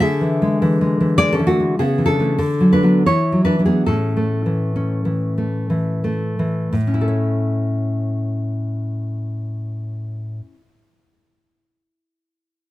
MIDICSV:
0, 0, Header, 1, 2, 480
1, 0, Start_track
1, 0, Key_signature, 3, "major"
1, 0, Tempo, 577478
1, 28, Time_signature, 3, 2, 24, 8
1, 987, Tempo, 606061
1, 1947, Tempo, 675676
1, 2427, Tempo, 790514
1, 2907, Tempo, 886263
1, 3387, Tempo, 946372
1, 3867, Tempo, 1025641
1, 5307, Tempo, 995025
1, 7203, End_track
2, 0, Start_track
2, 0, Title_t, "Nylon-string guitar"
2, 0, Program_c, 0, 24
2, 2, Note_on_c, 0, 76, 115
2, 9, Note_on_c, 0, 50, 87
2, 13, Note_on_c, 0, 68, 103
2, 174, Note_on_c, 0, 52, 68
2, 349, Note_on_c, 0, 56, 73
2, 504, Note_off_c, 0, 52, 0
2, 514, Note_on_c, 0, 52, 78
2, 665, Note_off_c, 0, 56, 0
2, 675, Note_on_c, 0, 56, 67
2, 826, Note_off_c, 0, 52, 0
2, 836, Note_on_c, 0, 52, 68
2, 941, Note_off_c, 0, 76, 0
2, 946, Note_off_c, 0, 68, 0
2, 971, Note_off_c, 0, 56, 0
2, 979, Note_on_c, 0, 74, 127
2, 980, Note_on_c, 0, 56, 71
2, 985, Note_on_c, 0, 68, 97
2, 1093, Note_off_c, 0, 68, 0
2, 1096, Note_on_c, 0, 69, 107
2, 1099, Note_off_c, 0, 74, 0
2, 1110, Note_on_c, 0, 61, 81
2, 1140, Note_off_c, 0, 52, 0
2, 1146, Note_off_c, 0, 56, 0
2, 1149, Note_on_c, 0, 52, 66
2, 1209, Note_on_c, 0, 66, 110
2, 1215, Note_off_c, 0, 61, 0
2, 1218, Note_on_c, 0, 57, 79
2, 1219, Note_off_c, 0, 69, 0
2, 1311, Note_off_c, 0, 57, 0
2, 1314, Note_on_c, 0, 56, 62
2, 1423, Note_off_c, 0, 50, 0
2, 1446, Note_off_c, 0, 66, 0
2, 1465, Note_on_c, 0, 68, 87
2, 1466, Note_off_c, 0, 52, 0
2, 1469, Note_off_c, 0, 56, 0
2, 1470, Note_on_c, 0, 49, 77
2, 1475, Note_on_c, 0, 59, 66
2, 1615, Note_on_c, 0, 52, 66
2, 1673, Note_off_c, 0, 68, 0
2, 1676, Note_on_c, 0, 69, 111
2, 1684, Note_off_c, 0, 59, 0
2, 1687, Note_on_c, 0, 62, 77
2, 1775, Note_off_c, 0, 52, 0
2, 1784, Note_on_c, 0, 52, 57
2, 1788, Note_on_c, 0, 57, 69
2, 1932, Note_off_c, 0, 52, 0
2, 1932, Note_off_c, 0, 57, 0
2, 1936, Note_off_c, 0, 49, 0
2, 1936, Note_on_c, 0, 50, 87
2, 2092, Note_on_c, 0, 54, 60
2, 2143, Note_off_c, 0, 62, 0
2, 2148, Note_off_c, 0, 69, 0
2, 2179, Note_on_c, 0, 71, 100
2, 2188, Note_on_c, 0, 62, 78
2, 2243, Note_off_c, 0, 54, 0
2, 2252, Note_on_c, 0, 54, 53
2, 2257, Note_on_c, 0, 59, 64
2, 2407, Note_off_c, 0, 54, 0
2, 2408, Note_off_c, 0, 50, 0
2, 2409, Note_off_c, 0, 59, 0
2, 2415, Note_off_c, 0, 62, 0
2, 2416, Note_off_c, 0, 71, 0
2, 2419, Note_on_c, 0, 73, 100
2, 2422, Note_on_c, 0, 52, 71
2, 2427, Note_on_c, 0, 64, 73
2, 2577, Note_on_c, 0, 54, 57
2, 2640, Note_off_c, 0, 64, 0
2, 2645, Note_off_c, 0, 73, 0
2, 2653, Note_on_c, 0, 71, 101
2, 2660, Note_on_c, 0, 62, 78
2, 2733, Note_off_c, 0, 54, 0
2, 2735, Note_off_c, 0, 62, 0
2, 2739, Note_on_c, 0, 54, 50
2, 2744, Note_on_c, 0, 62, 61
2, 2777, Note_off_c, 0, 71, 0
2, 2779, Note_on_c, 0, 68, 84
2, 2787, Note_on_c, 0, 59, 65
2, 2891, Note_off_c, 0, 52, 0
2, 2892, Note_off_c, 0, 54, 0
2, 2893, Note_off_c, 0, 62, 0
2, 2903, Note_off_c, 0, 59, 0
2, 2904, Note_off_c, 0, 68, 0
2, 2906, Note_on_c, 0, 69, 84
2, 2912, Note_on_c, 0, 45, 69
2, 2913, Note_on_c, 0, 61, 65
2, 3069, Note_on_c, 0, 57, 53
2, 3228, Note_on_c, 0, 52, 51
2, 3383, Note_off_c, 0, 61, 0
2, 3390, Note_on_c, 0, 61, 61
2, 3533, Note_off_c, 0, 52, 0
2, 3539, Note_on_c, 0, 52, 56
2, 3698, Note_off_c, 0, 57, 0
2, 3704, Note_on_c, 0, 57, 53
2, 3861, Note_off_c, 0, 52, 0
2, 3867, Note_on_c, 0, 52, 56
2, 4021, Note_off_c, 0, 57, 0
2, 4027, Note_on_c, 0, 57, 54
2, 4091, Note_off_c, 0, 69, 0
2, 4111, Note_off_c, 0, 61, 0
2, 4185, Note_off_c, 0, 52, 0
2, 4191, Note_on_c, 0, 52, 52
2, 4338, Note_off_c, 0, 45, 0
2, 4348, Note_on_c, 0, 45, 72
2, 4353, Note_off_c, 0, 52, 0
2, 4354, Note_off_c, 0, 57, 0
2, 4417, Note_on_c, 0, 61, 59
2, 4448, Note_on_c, 0, 64, 57
2, 4482, Note_on_c, 0, 69, 60
2, 4513, Note_on_c, 0, 73, 59
2, 6087, Note_off_c, 0, 45, 0
2, 6158, Note_off_c, 0, 61, 0
2, 6190, Note_off_c, 0, 64, 0
2, 6225, Note_off_c, 0, 69, 0
2, 6257, Note_off_c, 0, 73, 0
2, 7203, End_track
0, 0, End_of_file